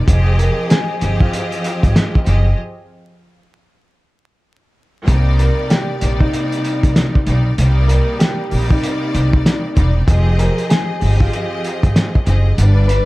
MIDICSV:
0, 0, Header, 1, 5, 480
1, 0, Start_track
1, 0, Key_signature, -3, "minor"
1, 0, Tempo, 625000
1, 58, Time_signature, 4, 2, 24, 8
1, 10024, End_track
2, 0, Start_track
2, 0, Title_t, "Clean electric guitar"
2, 0, Program_c, 0, 27
2, 300, Note_on_c, 0, 70, 76
2, 515, Note_off_c, 0, 70, 0
2, 534, Note_on_c, 0, 68, 88
2, 901, Note_off_c, 0, 68, 0
2, 925, Note_on_c, 0, 65, 78
2, 1947, Note_off_c, 0, 65, 0
2, 4144, Note_on_c, 0, 70, 79
2, 4357, Note_off_c, 0, 70, 0
2, 4380, Note_on_c, 0, 67, 75
2, 4743, Note_off_c, 0, 67, 0
2, 4769, Note_on_c, 0, 63, 76
2, 5789, Note_off_c, 0, 63, 0
2, 6055, Note_on_c, 0, 70, 75
2, 6273, Note_off_c, 0, 70, 0
2, 6293, Note_on_c, 0, 67, 78
2, 6660, Note_off_c, 0, 67, 0
2, 6693, Note_on_c, 0, 63, 73
2, 7711, Note_off_c, 0, 63, 0
2, 7980, Note_on_c, 0, 70, 74
2, 8195, Note_off_c, 0, 70, 0
2, 8215, Note_on_c, 0, 68, 86
2, 8581, Note_off_c, 0, 68, 0
2, 8606, Note_on_c, 0, 65, 77
2, 9628, Note_off_c, 0, 65, 0
2, 9891, Note_on_c, 0, 71, 78
2, 10024, Note_off_c, 0, 71, 0
2, 10024, End_track
3, 0, Start_track
3, 0, Title_t, "String section"
3, 0, Program_c, 1, 48
3, 37, Note_on_c, 1, 53, 107
3, 42, Note_on_c, 1, 60, 86
3, 47, Note_on_c, 1, 67, 102
3, 52, Note_on_c, 1, 68, 98
3, 58, Note_on_c, 1, 75, 115
3, 724, Note_off_c, 1, 53, 0
3, 726, Note_off_c, 1, 60, 0
3, 729, Note_off_c, 1, 67, 0
3, 731, Note_off_c, 1, 68, 0
3, 734, Note_off_c, 1, 75, 0
3, 759, Note_on_c, 1, 53, 107
3, 764, Note_on_c, 1, 60, 98
3, 769, Note_on_c, 1, 67, 106
3, 774, Note_on_c, 1, 68, 96
3, 779, Note_on_c, 1, 75, 114
3, 1670, Note_off_c, 1, 53, 0
3, 1672, Note_off_c, 1, 60, 0
3, 1675, Note_off_c, 1, 67, 0
3, 1677, Note_off_c, 1, 68, 0
3, 1680, Note_off_c, 1, 75, 0
3, 1729, Note_on_c, 1, 53, 79
3, 1734, Note_on_c, 1, 60, 71
3, 1739, Note_on_c, 1, 67, 73
3, 1745, Note_on_c, 1, 68, 72
3, 1750, Note_on_c, 1, 75, 91
3, 1959, Note_off_c, 1, 53, 0
3, 1962, Note_off_c, 1, 60, 0
3, 1964, Note_off_c, 1, 67, 0
3, 1967, Note_off_c, 1, 68, 0
3, 1969, Note_off_c, 1, 75, 0
3, 3872, Note_on_c, 1, 48, 106
3, 3877, Note_on_c, 1, 55, 89
3, 3882, Note_on_c, 1, 58, 97
3, 3887, Note_on_c, 1, 63, 92
3, 3892, Note_on_c, 1, 74, 120
3, 4561, Note_off_c, 1, 48, 0
3, 4563, Note_off_c, 1, 55, 0
3, 4566, Note_off_c, 1, 58, 0
3, 4569, Note_off_c, 1, 63, 0
3, 4571, Note_off_c, 1, 74, 0
3, 4604, Note_on_c, 1, 48, 104
3, 4609, Note_on_c, 1, 55, 95
3, 4614, Note_on_c, 1, 58, 95
3, 4619, Note_on_c, 1, 63, 95
3, 4624, Note_on_c, 1, 74, 113
3, 5512, Note_off_c, 1, 48, 0
3, 5515, Note_off_c, 1, 55, 0
3, 5517, Note_off_c, 1, 58, 0
3, 5520, Note_off_c, 1, 63, 0
3, 5522, Note_off_c, 1, 74, 0
3, 5574, Note_on_c, 1, 48, 80
3, 5579, Note_on_c, 1, 55, 70
3, 5584, Note_on_c, 1, 58, 69
3, 5589, Note_on_c, 1, 63, 71
3, 5594, Note_on_c, 1, 74, 91
3, 5802, Note_off_c, 1, 48, 0
3, 5804, Note_off_c, 1, 55, 0
3, 5807, Note_off_c, 1, 58, 0
3, 5809, Note_off_c, 1, 63, 0
3, 5811, Note_off_c, 1, 74, 0
3, 5812, Note_on_c, 1, 48, 95
3, 5817, Note_on_c, 1, 55, 94
3, 5822, Note_on_c, 1, 58, 99
3, 5827, Note_on_c, 1, 63, 89
3, 5832, Note_on_c, 1, 74, 105
3, 6491, Note_off_c, 1, 48, 0
3, 6493, Note_off_c, 1, 55, 0
3, 6496, Note_off_c, 1, 58, 0
3, 6498, Note_off_c, 1, 63, 0
3, 6501, Note_off_c, 1, 74, 0
3, 6520, Note_on_c, 1, 48, 102
3, 6525, Note_on_c, 1, 55, 100
3, 6530, Note_on_c, 1, 58, 98
3, 6535, Note_on_c, 1, 63, 91
3, 6540, Note_on_c, 1, 74, 120
3, 7430, Note_off_c, 1, 48, 0
3, 7433, Note_off_c, 1, 55, 0
3, 7435, Note_off_c, 1, 58, 0
3, 7438, Note_off_c, 1, 63, 0
3, 7440, Note_off_c, 1, 74, 0
3, 7477, Note_on_c, 1, 48, 79
3, 7482, Note_on_c, 1, 55, 77
3, 7487, Note_on_c, 1, 58, 68
3, 7492, Note_on_c, 1, 63, 75
3, 7497, Note_on_c, 1, 74, 95
3, 7713, Note_off_c, 1, 48, 0
3, 7715, Note_off_c, 1, 55, 0
3, 7716, Note_on_c, 1, 53, 106
3, 7718, Note_off_c, 1, 58, 0
3, 7721, Note_off_c, 1, 63, 0
3, 7721, Note_on_c, 1, 60, 91
3, 7723, Note_off_c, 1, 74, 0
3, 7726, Note_on_c, 1, 67, 101
3, 7731, Note_on_c, 1, 68, 102
3, 7736, Note_on_c, 1, 75, 115
3, 8403, Note_off_c, 1, 53, 0
3, 8406, Note_off_c, 1, 60, 0
3, 8408, Note_off_c, 1, 67, 0
3, 8411, Note_off_c, 1, 68, 0
3, 8413, Note_off_c, 1, 75, 0
3, 8438, Note_on_c, 1, 53, 107
3, 8443, Note_on_c, 1, 60, 94
3, 8449, Note_on_c, 1, 67, 107
3, 8453, Note_on_c, 1, 68, 95
3, 8458, Note_on_c, 1, 75, 120
3, 9349, Note_off_c, 1, 53, 0
3, 9352, Note_off_c, 1, 60, 0
3, 9354, Note_off_c, 1, 67, 0
3, 9357, Note_off_c, 1, 68, 0
3, 9359, Note_off_c, 1, 75, 0
3, 9408, Note_on_c, 1, 53, 77
3, 9413, Note_on_c, 1, 60, 72
3, 9418, Note_on_c, 1, 67, 74
3, 9423, Note_on_c, 1, 68, 75
3, 9428, Note_on_c, 1, 75, 94
3, 9634, Note_on_c, 1, 43, 115
3, 9638, Note_off_c, 1, 53, 0
3, 9640, Note_on_c, 1, 55, 100
3, 9641, Note_off_c, 1, 60, 0
3, 9643, Note_off_c, 1, 67, 0
3, 9645, Note_on_c, 1, 62, 98
3, 9646, Note_off_c, 1, 68, 0
3, 9648, Note_off_c, 1, 75, 0
3, 9650, Note_on_c, 1, 71, 89
3, 9654, Note_on_c, 1, 74, 105
3, 10024, Note_off_c, 1, 43, 0
3, 10024, Note_off_c, 1, 55, 0
3, 10024, Note_off_c, 1, 62, 0
3, 10024, Note_off_c, 1, 71, 0
3, 10024, Note_off_c, 1, 74, 0
3, 10024, End_track
4, 0, Start_track
4, 0, Title_t, "Upright bass"
4, 0, Program_c, 2, 32
4, 61, Note_on_c, 2, 29, 107
4, 366, Note_off_c, 2, 29, 0
4, 784, Note_on_c, 2, 31, 95
4, 971, Note_off_c, 2, 31, 0
4, 1410, Note_on_c, 2, 32, 91
4, 1482, Note_off_c, 2, 32, 0
4, 1744, Note_on_c, 2, 30, 95
4, 1931, Note_off_c, 2, 30, 0
4, 3902, Note_on_c, 2, 36, 98
4, 4206, Note_off_c, 2, 36, 0
4, 4623, Note_on_c, 2, 34, 86
4, 4811, Note_off_c, 2, 34, 0
4, 5251, Note_on_c, 2, 36, 94
4, 5322, Note_off_c, 2, 36, 0
4, 5583, Note_on_c, 2, 35, 95
4, 5771, Note_off_c, 2, 35, 0
4, 5823, Note_on_c, 2, 36, 111
4, 6127, Note_off_c, 2, 36, 0
4, 6543, Note_on_c, 2, 34, 88
4, 6731, Note_off_c, 2, 34, 0
4, 7024, Note_on_c, 2, 36, 97
4, 7211, Note_off_c, 2, 36, 0
4, 7504, Note_on_c, 2, 28, 95
4, 7691, Note_off_c, 2, 28, 0
4, 7741, Note_on_c, 2, 29, 105
4, 8046, Note_off_c, 2, 29, 0
4, 8463, Note_on_c, 2, 31, 96
4, 8651, Note_off_c, 2, 31, 0
4, 9090, Note_on_c, 2, 32, 90
4, 9161, Note_off_c, 2, 32, 0
4, 9423, Note_on_c, 2, 30, 97
4, 9610, Note_off_c, 2, 30, 0
4, 9662, Note_on_c, 2, 31, 110
4, 9967, Note_off_c, 2, 31, 0
4, 10024, End_track
5, 0, Start_track
5, 0, Title_t, "Drums"
5, 59, Note_on_c, 9, 36, 123
5, 62, Note_on_c, 9, 42, 92
5, 136, Note_off_c, 9, 36, 0
5, 139, Note_off_c, 9, 42, 0
5, 301, Note_on_c, 9, 42, 76
5, 377, Note_off_c, 9, 42, 0
5, 539, Note_on_c, 9, 42, 93
5, 547, Note_on_c, 9, 38, 108
5, 551, Note_on_c, 9, 40, 87
5, 616, Note_off_c, 9, 42, 0
5, 623, Note_off_c, 9, 38, 0
5, 627, Note_off_c, 9, 40, 0
5, 778, Note_on_c, 9, 42, 81
5, 855, Note_off_c, 9, 42, 0
5, 925, Note_on_c, 9, 36, 103
5, 1002, Note_off_c, 9, 36, 0
5, 1025, Note_on_c, 9, 42, 91
5, 1101, Note_off_c, 9, 42, 0
5, 1169, Note_on_c, 9, 42, 59
5, 1246, Note_off_c, 9, 42, 0
5, 1263, Note_on_c, 9, 42, 79
5, 1339, Note_off_c, 9, 42, 0
5, 1408, Note_on_c, 9, 36, 91
5, 1411, Note_on_c, 9, 42, 57
5, 1485, Note_off_c, 9, 36, 0
5, 1488, Note_off_c, 9, 42, 0
5, 1504, Note_on_c, 9, 38, 110
5, 1506, Note_on_c, 9, 42, 95
5, 1508, Note_on_c, 9, 40, 92
5, 1581, Note_off_c, 9, 38, 0
5, 1583, Note_off_c, 9, 42, 0
5, 1585, Note_off_c, 9, 40, 0
5, 1654, Note_on_c, 9, 36, 89
5, 1731, Note_off_c, 9, 36, 0
5, 1740, Note_on_c, 9, 42, 70
5, 1816, Note_off_c, 9, 42, 0
5, 3899, Note_on_c, 9, 36, 120
5, 3903, Note_on_c, 9, 42, 91
5, 3976, Note_off_c, 9, 36, 0
5, 3980, Note_off_c, 9, 42, 0
5, 4141, Note_on_c, 9, 42, 78
5, 4218, Note_off_c, 9, 42, 0
5, 4380, Note_on_c, 9, 42, 91
5, 4387, Note_on_c, 9, 38, 104
5, 4391, Note_on_c, 9, 40, 86
5, 4457, Note_off_c, 9, 42, 0
5, 4464, Note_off_c, 9, 38, 0
5, 4468, Note_off_c, 9, 40, 0
5, 4618, Note_on_c, 9, 42, 86
5, 4695, Note_off_c, 9, 42, 0
5, 4765, Note_on_c, 9, 36, 101
5, 4842, Note_off_c, 9, 36, 0
5, 4865, Note_on_c, 9, 42, 90
5, 4942, Note_off_c, 9, 42, 0
5, 5010, Note_on_c, 9, 42, 59
5, 5086, Note_off_c, 9, 42, 0
5, 5103, Note_on_c, 9, 42, 77
5, 5180, Note_off_c, 9, 42, 0
5, 5248, Note_on_c, 9, 36, 96
5, 5252, Note_on_c, 9, 42, 55
5, 5325, Note_off_c, 9, 36, 0
5, 5328, Note_off_c, 9, 42, 0
5, 5345, Note_on_c, 9, 38, 116
5, 5347, Note_on_c, 9, 42, 96
5, 5348, Note_on_c, 9, 40, 88
5, 5421, Note_off_c, 9, 38, 0
5, 5423, Note_off_c, 9, 42, 0
5, 5425, Note_off_c, 9, 40, 0
5, 5494, Note_on_c, 9, 36, 88
5, 5571, Note_off_c, 9, 36, 0
5, 5580, Note_on_c, 9, 42, 71
5, 5657, Note_off_c, 9, 42, 0
5, 5823, Note_on_c, 9, 42, 91
5, 5900, Note_off_c, 9, 42, 0
5, 6061, Note_on_c, 9, 42, 74
5, 6138, Note_off_c, 9, 42, 0
5, 6300, Note_on_c, 9, 42, 92
5, 6307, Note_on_c, 9, 38, 107
5, 6311, Note_on_c, 9, 40, 87
5, 6376, Note_off_c, 9, 42, 0
5, 6384, Note_off_c, 9, 38, 0
5, 6388, Note_off_c, 9, 40, 0
5, 6538, Note_on_c, 9, 46, 60
5, 6615, Note_off_c, 9, 46, 0
5, 6685, Note_on_c, 9, 36, 102
5, 6762, Note_off_c, 9, 36, 0
5, 6785, Note_on_c, 9, 42, 96
5, 6862, Note_off_c, 9, 42, 0
5, 7023, Note_on_c, 9, 42, 77
5, 7100, Note_off_c, 9, 42, 0
5, 7168, Note_on_c, 9, 36, 93
5, 7245, Note_off_c, 9, 36, 0
5, 7265, Note_on_c, 9, 38, 112
5, 7267, Note_on_c, 9, 42, 99
5, 7269, Note_on_c, 9, 40, 92
5, 7341, Note_off_c, 9, 38, 0
5, 7344, Note_off_c, 9, 42, 0
5, 7345, Note_off_c, 9, 40, 0
5, 7499, Note_on_c, 9, 42, 68
5, 7501, Note_on_c, 9, 36, 108
5, 7576, Note_off_c, 9, 42, 0
5, 7578, Note_off_c, 9, 36, 0
5, 7739, Note_on_c, 9, 36, 120
5, 7742, Note_on_c, 9, 42, 90
5, 7816, Note_off_c, 9, 36, 0
5, 7819, Note_off_c, 9, 42, 0
5, 7981, Note_on_c, 9, 42, 76
5, 8057, Note_off_c, 9, 42, 0
5, 8127, Note_on_c, 9, 42, 46
5, 8204, Note_off_c, 9, 42, 0
5, 8220, Note_on_c, 9, 42, 92
5, 8227, Note_on_c, 9, 38, 108
5, 8231, Note_on_c, 9, 40, 89
5, 8296, Note_off_c, 9, 42, 0
5, 8304, Note_off_c, 9, 38, 0
5, 8308, Note_off_c, 9, 40, 0
5, 8458, Note_on_c, 9, 46, 61
5, 8535, Note_off_c, 9, 46, 0
5, 8605, Note_on_c, 9, 36, 101
5, 8682, Note_off_c, 9, 36, 0
5, 8705, Note_on_c, 9, 42, 91
5, 8782, Note_off_c, 9, 42, 0
5, 8943, Note_on_c, 9, 42, 75
5, 9020, Note_off_c, 9, 42, 0
5, 9088, Note_on_c, 9, 36, 97
5, 9091, Note_on_c, 9, 42, 55
5, 9165, Note_off_c, 9, 36, 0
5, 9168, Note_off_c, 9, 42, 0
5, 9184, Note_on_c, 9, 38, 109
5, 9186, Note_on_c, 9, 42, 100
5, 9188, Note_on_c, 9, 40, 90
5, 9261, Note_off_c, 9, 38, 0
5, 9263, Note_off_c, 9, 42, 0
5, 9265, Note_off_c, 9, 40, 0
5, 9334, Note_on_c, 9, 36, 91
5, 9410, Note_off_c, 9, 36, 0
5, 9420, Note_on_c, 9, 42, 72
5, 9496, Note_off_c, 9, 42, 0
5, 9662, Note_on_c, 9, 42, 94
5, 9739, Note_off_c, 9, 42, 0
5, 9900, Note_on_c, 9, 42, 76
5, 9977, Note_off_c, 9, 42, 0
5, 10024, End_track
0, 0, End_of_file